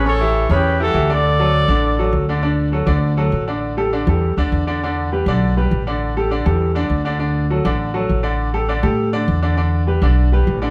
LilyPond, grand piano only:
\new Staff \with { instrumentName = "Grand piano" } { \time 4/4 \key d \major \tempo 4 = 202 <cis cis' cis''>8 <e e' g'>4 <cis cis' cis''>4 <e e' g'>8 <e e' g'>8 <d d' d''>8~ | <d d' d''>8 <fis fis' a'>4 <d d' d''>4 <fis fis' a'>4 <d d' d''>8 | <d d' d''>4 <fis fis' a'>8 <d d' d''>4 <fis fis' a'>4 <d d' d''>8~ | <d d' d''>8 <g g' a'>8 <d d' d''>8 <g g' a'>4 <d d' d''>4 <d d' d''>8 |
<d d' d''>4 <g g' b'>8 <d d' d''>4 <g g' b'>4 <d d' d''>8~ | <d d' d''>8 <g g' a'>8 <d d' d''>8 <g g' a'>4 <d d' d''>4 <d d' d''>8 | <d d' d''>4 <fis fis' a'>8 <d d' d''>4 <fis fis' a'>4 <d d' d''>8~ | <d d' d''>8 <g g' a'>8 <d d' d''>8 <g g' a'>4 <d d' d''>4 <d d' d''>8 |
<d d' d''>4 <g g' b'>8 <d d' d''>4 <g g' b'>4 <d d' d''>8 | }